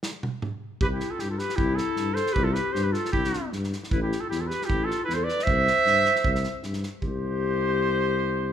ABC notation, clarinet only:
X:1
M:2/4
L:1/16
Q:"Swing 16ths" 1/4=154
K:C
V:1 name="Clarinet"
z8 | G E2 F E F G2 | E2 E4 A2 | G F G2 G G F2 |
E4 z4 | E E2 F E F G2 | E2 F2 E A B2 | c8- |
c4 z4 | G8- | G8 |]